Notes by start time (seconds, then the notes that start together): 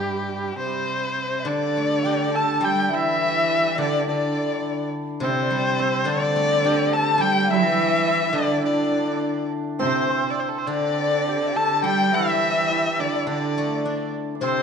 Already playing: G2 A3 D4 E4 G4
0.01 G3
0.07 G3
0.14 G3
0.23 G3
0.29 G3
0.38 G3
0.43 G3
0.52 G3
0.58 C3 G3 C5
0.66 G3
1.40 D5 E5
1.45 D3 D4 D5
1.77 A3
2.04 D4 G4 G5
2.31 A4 A5
2.61 G3 G4 G5
2.89 E3 E4 E5
2.94 E5
3.48 E5
3.76 D3 D4 D5
3.80 D5
4.04 D5
4.08 D3 D4 D5
5.20 C3 C4 C5
5.30 D5
5.36 C5
5.43 D5
5.50 G3 C5
5.59 D5
5.66 C5
5.73 D5
5.79 C4
5.83 C5
6.05 D3 D4 D5
6.36 A3
6.64 D4 G4
6.92 A4 A5
7.18 G3 G5
7.22 G4
7.49 E3 E4 E5
8.08 E4
8.29 D3 E4
8.34 D3 D4 D5
8.62 D3 D4 D5
8.71 D4
8.77 D4
8.84 D4
8.91 D4
8.99 D4
9.06 D4
9.21 D4
9.79 C3 C4 C5
9.87 C4
9.95 C4
10.03 C4
10.10 C4
10.18 C4
10.30 D5
10.39 C5
10.49 A4
10.58 C5
10.67 D3 D4 D5
11.28 G4
11.56 A4 A5
11.83 G3 G4 G5
12.07 G4
12.12 E3 E4 E5
12.70 E4
12.98 D3 D4 D5
13.26 D3 D4 D5
13.58 A3
13.85 D4
14.35 D4
14.41 C3 C4 C5